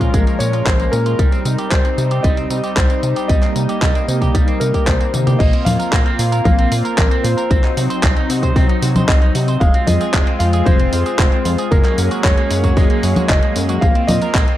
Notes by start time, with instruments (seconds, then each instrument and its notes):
Already playing: analog synth pad F3 G#3 A#3 C#4 A#4, electric grand piano F4
0.01 clean electric guitar F4, kick, closed hi-hat, tambourine
0.14 analog synth bass A#1, clean electric guitar G#3, kick, closed hi-hat, tambourine
0.27 clean electric guitar A#3, closed hi-hat, tambourine
0.39 analog synth bass A#2, clean electric guitar C#4, electric grand piano C#5, closed hi-hat, tambourine
0.53 clean electric guitar F4, closed hi-hat, tambourine
0.65 analog synth bass A#1, clean electric guitar G#3, electric grand piano C5, kick, clap, closed hi-hat, tambourine
0.80 clean electric guitar A#3, closed hi-hat, tambourine
0.92 analog synth bass A#2, clean electric guitar C#4, electric grand piano A#4, closed hi-hat, tambourine
1.06 clean electric guitar F4, closed hi-hat, tambourine
1.19 analog synth bass C2, clean electric guitar G3, analog synth pad G3 C4 D#4, kick, closed hi-hat, tambourine
1.32 clean electric guitar C4, closed hi-hat, tambourine
1.45 analog synth bass C3, clean electric guitar D#4, closed hi-hat, tambourine
1.58 clean electric guitar G4, closed hi-hat, tambourine
1.70 analog synth bass C2, clean electric guitar G3, electric grand piano C5, kick, clap, closed hi-hat, tambourine
1.85 clean electric guitar C4, closed hi-hat, tambourine
1.98 analog synth bass C3, clean electric guitar D#4, closed hi-hat, tambourine
2.11 clean electric guitar G4, closed hi-hat, tambourine
2.23 analog synth bass C2, clean electric guitar G3, electric grand piano D#5, kick, closed hi-hat, tambourine
2.37 clean electric guitar C4, closed hi-hat, tambourine
2.50 analog synth bass C3, clean electric guitar D#4, closed hi-hat, tambourine
2.64 clean electric guitar G4, closed hi-hat, tambourine
2.76 analog synth bass C2, clean electric guitar G3, electric grand piano C5, kick, clap, closed hi-hat, tambourine
2.90 clean electric guitar C4, closed hi-hat, tambourine
3.03 analog synth bass C3, clean electric guitar D#4, closed hi-hat, tambourine
3.16 clean electric guitar G4, closed hi-hat, tambourine
3.28 analog synth bass C2, clean electric guitar G3, analog synth pad A#3, electric grand piano D#5, kick, closed hi-hat, tambourine
3.43 clean electric guitar C4, clap, closed hi-hat, tambourine
3.56 analog synth bass C3, clean electric guitar D#4, closed hi-hat, tambourine
3.69 clean electric guitar G4, closed hi-hat, tambourine
3.81 analog synth bass C2, clean electric guitar G3, electric grand piano D#5, kick, clap, closed hi-hat, tambourine
3.95 clean electric guitar C4, closed hi-hat, tambourine
4.08 analog synth bass C3, clean electric guitar D#4, closed hi-hat, tambourine
4.21 clean electric guitar G4, kick, closed hi-hat, tambourine
4.35 analog synth bass C2, clean electric guitar G3, kick, closed hi-hat, tambourine
4.48 clean electric guitar C4, closed hi-hat, tambourine
4.60 analog synth bass C3, clean electric guitar D#4, electric grand piano A#4, closed hi-hat, tambourine
4.74 clean electric guitar G4, kick, closed hi-hat, tambourine
4.86 analog synth bass C2, clean electric guitar G3, electric grand piano C5, kick, clap, closed hi-hat, tambourine
5.01 clean electric guitar C4, closed hi-hat, tambourine
5.14 analog synth bass C3, clean electric guitar D#4, closed hi-hat, high tom, tambourine
5.27 clean electric guitar G4, closed hi-hat, mid tom, tambourine
5.39 analog synth bass A#1, clean electric guitar A#3, analog synth pad A#3 C4 F4, electric grand piano D#5, kick, closed hi-hat, tambourine, crash
5.53 clean electric guitar C4, closed hi-hat
5.65 analog synth bass A#2, clean electric guitar F4, electric grand piano F5, open hi-hat, tambourine, high conga
5.79 clean electric guitar A#4, closed hi-hat, tambourine
5.93 analog synth bass A#1, clean electric guitar A#3, kick, clap, closed hi-hat, tambourine
6.06 clean electric guitar C4, closed hi-hat
6.19 analog synth bass A#2, clean electric guitar F4, open hi-hat, tambourine
6.32 clean electric guitar A#4, closed hi-hat, tambourine
6.44 analog synth bass A#1, clean electric guitar A#3, electric grand piano F5, kick, closed hi-hat, tambourine, high conga
6.58 clean electric guitar C4, closed hi-hat
6.72 analog synth bass A#2, clean electric guitar F4, open hi-hat, tambourine
6.85 clean electric guitar A#4, closed hi-hat, tambourine
6.97 analog synth bass A#1, clean electric guitar A#3, electric grand piano A#4, kick, clap, closed hi-hat, tambourine
7.11 clean electric guitar C4, closed hi-hat
7.23 analog synth bass A#2, clean electric guitar F4, electric grand piano C5, open hi-hat, tambourine
7.37 clean electric guitar A#4, closed hi-hat, tambourine
7.50 analog synth bass C2, analog synth pad F#3 D#4, clean electric guitar C4, kick, closed hi-hat, tambourine
7.64 clean electric guitar D#4, clap, closed hi-hat
7.77 analog synth bass C3, clean electric guitar F#4, open hi-hat, tambourine
7.90 clean electric guitar C5, closed hi-hat, tambourine
8.03 analog synth bass C2, clean electric guitar C4, kick, clap, closed hi-hat, tambourine
8.17 clean electric guitar D#4, closed hi-hat
8.30 analog synth bass C3, clean electric guitar F#4, open hi-hat, tambourine
8.43 clean electric guitar C5, kick, closed hi-hat, tambourine
8.56 analog synth bass C2, clean electric guitar C4, kick, open hi-hat, tambourine
8.69 clean electric guitar D#4, closed hi-hat
8.82 analog synth bass C3, clean electric guitar F#4, open hi-hat, tambourine
8.96 clean electric guitar C5, closed hi-hat, tambourine, high conga
9.08 analog synth bass C2, clean electric guitar C4, electric grand piano D#5, kick, clap, closed hi-hat, tambourine
9.22 clean electric guitar D#4, closed hi-hat
9.35 analog synth bass C3, clean electric guitar F#4, open hi-hat, tambourine
9.48 clean electric guitar C5, closed hi-hat, tambourine
9.60 analog synth bass F1, analog synth pad G#3 C4 F4, clean electric guitar G#3, electric grand piano F5, kick, closed hi-hat, tambourine
9.74 clean electric guitar C4, closed hi-hat
9.87 analog synth bass F2, clean electric guitar F4, electric grand piano D#5, open hi-hat, tambourine, high conga
10.01 clean electric guitar G#4, closed hi-hat, tambourine
10.14 analog synth bass F1, clean electric guitar G#3, kick, clap, closed hi-hat, tambourine
10.27 clean electric guitar C4, closed hi-hat
10.39 analog synth bass F2, clean electric guitar F4, electric grand piano F5, open hi-hat, tambourine
10.53 clean electric guitar G#4, closed hi-hat, tambourine
10.65 analog synth bass F1, clean electric guitar G#3, electric grand piano C5, kick, closed hi-hat, tambourine, high conga
10.80 clean electric guitar C4, closed hi-hat
10.93 analog synth bass F2, clean electric guitar F4, open hi-hat, tambourine
11.06 clean electric guitar G#4, closed hi-hat, tambourine
11.18 analog synth bass F1, clean electric guitar G#3, electric grand piano C5, kick, clap, closed hi-hat, tambourine
11.32 clean electric guitar C4, closed hi-hat
11.45 analog synth bass F2, clean electric guitar F4, open hi-hat, tambourine
11.58 clean electric guitar G#4, closed hi-hat, tambourine
11.71 analog synth bass F#1, analog synth pad F#3 G#3 A#3 C#4 G#4, clean electric guitar G#3, electric grand piano A#4, kick, closed hi-hat, tambourine
11.85 clean electric guitar A#3, clap, closed hi-hat
11.98 analog synth bass F#2, clean electric guitar C#4, open hi-hat, tambourine
12.11 clean electric guitar F#4, closed hi-hat, tambourine
12.23 analog synth bass F#1, clean electric guitar G#3, electric grand piano C#5, kick, clap, closed hi-hat, tambourine
12.38 clean electric guitar A#3, closed hi-hat
12.51 analog synth bass F#2, clean electric guitar C#4, open hi-hat, tambourine
12.64 clean electric guitar F#4, kick, closed hi-hat, tambourine
12.77 analog synth bass F#1, clean electric guitar G#3, kick, open hi-hat, tambourine
12.90 clean electric guitar A#3, closed hi-hat
13.03 analog synth bass F#2, clean electric guitar C#4, open hi-hat, tambourine
13.16 clean electric guitar F#4, closed hi-hat, tambourine, high conga
13.29 analog synth bass F#1, clean electric guitar G#3, electric grand piano D#5, kick, clap, closed hi-hat, tambourine
13.43 clean electric guitar A#3, closed hi-hat
13.56 analog synth bass F#2, clean electric guitar C#4, open hi-hat, tambourine
13.69 clean electric guitar F#4, closed hi-hat, tambourine
13.81 analog synth bass A#1, clean electric guitar A#3, analog synth pad C4 F4, electric grand piano F5, kick, closed hi-hat, tambourine
13.95 clean electric guitar C4, closed hi-hat
14.07 analog synth bass A#2, clean electric guitar F4, electric grand piano D#5, open hi-hat, tambourine, high conga
14.22 clean electric guitar A#4, closed hi-hat, tambourine
14.35 analog synth bass A#1, clean electric guitar A#3, kick, clap, closed hi-hat, tambourine
14.48 clean electric guitar C4, closed hi-hat